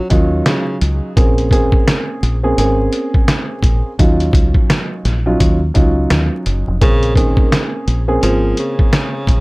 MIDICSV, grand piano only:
0, 0, Header, 1, 2, 480
1, 0, Start_track
1, 0, Key_signature, -5, "minor"
1, 0, Tempo, 705882
1, 794, Time_signature, 4, 2, 24, 8
1, 6395, End_track
2, 0, Start_track
2, 0, Title_t, "Grand piano"
2, 0, Program_c, 0, 0
2, 64, Note_on_c, 0, 54, 93
2, 66, Note_on_c, 0, 61, 89
2, 68, Note_on_c, 0, 63, 92
2, 69, Note_on_c, 0, 65, 97
2, 743, Note_off_c, 0, 54, 0
2, 744, Note_off_c, 0, 61, 0
2, 745, Note_off_c, 0, 63, 0
2, 746, Note_off_c, 0, 65, 0
2, 792, Note_on_c, 0, 58, 92
2, 793, Note_on_c, 0, 60, 86
2, 795, Note_on_c, 0, 61, 81
2, 797, Note_on_c, 0, 68, 92
2, 1017, Note_off_c, 0, 58, 0
2, 1018, Note_off_c, 0, 60, 0
2, 1019, Note_off_c, 0, 61, 0
2, 1020, Note_off_c, 0, 68, 0
2, 1031, Note_on_c, 0, 58, 92
2, 1032, Note_on_c, 0, 60, 86
2, 1034, Note_on_c, 0, 61, 90
2, 1036, Note_on_c, 0, 68, 103
2, 1599, Note_off_c, 0, 58, 0
2, 1600, Note_off_c, 0, 60, 0
2, 1601, Note_off_c, 0, 61, 0
2, 1601, Note_off_c, 0, 68, 0
2, 1654, Note_on_c, 0, 58, 94
2, 1656, Note_on_c, 0, 60, 87
2, 1657, Note_on_c, 0, 61, 88
2, 1659, Note_on_c, 0, 68, 104
2, 1746, Note_off_c, 0, 58, 0
2, 1747, Note_off_c, 0, 60, 0
2, 1748, Note_off_c, 0, 61, 0
2, 1750, Note_off_c, 0, 68, 0
2, 1756, Note_on_c, 0, 58, 97
2, 1757, Note_on_c, 0, 60, 88
2, 1759, Note_on_c, 0, 61, 83
2, 1760, Note_on_c, 0, 68, 105
2, 2653, Note_off_c, 0, 58, 0
2, 2654, Note_off_c, 0, 60, 0
2, 2655, Note_off_c, 0, 61, 0
2, 2656, Note_off_c, 0, 68, 0
2, 2711, Note_on_c, 0, 54, 88
2, 2712, Note_on_c, 0, 61, 78
2, 2714, Note_on_c, 0, 63, 76
2, 2716, Note_on_c, 0, 65, 94
2, 3496, Note_off_c, 0, 54, 0
2, 3496, Note_off_c, 0, 61, 0
2, 3497, Note_off_c, 0, 63, 0
2, 3498, Note_off_c, 0, 65, 0
2, 3577, Note_on_c, 0, 54, 94
2, 3579, Note_on_c, 0, 61, 85
2, 3580, Note_on_c, 0, 63, 82
2, 3582, Note_on_c, 0, 65, 104
2, 3795, Note_off_c, 0, 54, 0
2, 3795, Note_off_c, 0, 61, 0
2, 3796, Note_off_c, 0, 63, 0
2, 3797, Note_off_c, 0, 65, 0
2, 3904, Note_on_c, 0, 54, 91
2, 3906, Note_on_c, 0, 61, 89
2, 3908, Note_on_c, 0, 63, 91
2, 3910, Note_on_c, 0, 65, 97
2, 4583, Note_off_c, 0, 54, 0
2, 4584, Note_off_c, 0, 61, 0
2, 4585, Note_off_c, 0, 63, 0
2, 4586, Note_off_c, 0, 65, 0
2, 4631, Note_on_c, 0, 58, 93
2, 4633, Note_on_c, 0, 60, 81
2, 4635, Note_on_c, 0, 61, 83
2, 4637, Note_on_c, 0, 68, 92
2, 4857, Note_off_c, 0, 58, 0
2, 4858, Note_off_c, 0, 60, 0
2, 4859, Note_off_c, 0, 61, 0
2, 4860, Note_off_c, 0, 68, 0
2, 4871, Note_on_c, 0, 58, 95
2, 4873, Note_on_c, 0, 60, 82
2, 4874, Note_on_c, 0, 61, 91
2, 4876, Note_on_c, 0, 68, 101
2, 5439, Note_off_c, 0, 58, 0
2, 5440, Note_off_c, 0, 60, 0
2, 5440, Note_off_c, 0, 61, 0
2, 5441, Note_off_c, 0, 68, 0
2, 5493, Note_on_c, 0, 58, 92
2, 5494, Note_on_c, 0, 60, 86
2, 5496, Note_on_c, 0, 61, 85
2, 5497, Note_on_c, 0, 68, 104
2, 5585, Note_off_c, 0, 58, 0
2, 5586, Note_off_c, 0, 60, 0
2, 5589, Note_off_c, 0, 61, 0
2, 5590, Note_off_c, 0, 68, 0
2, 5595, Note_on_c, 0, 58, 93
2, 5596, Note_on_c, 0, 60, 87
2, 5599, Note_on_c, 0, 61, 79
2, 5600, Note_on_c, 0, 68, 100
2, 6395, Note_off_c, 0, 58, 0
2, 6395, Note_off_c, 0, 60, 0
2, 6395, Note_off_c, 0, 61, 0
2, 6395, Note_off_c, 0, 68, 0
2, 6395, End_track
0, 0, End_of_file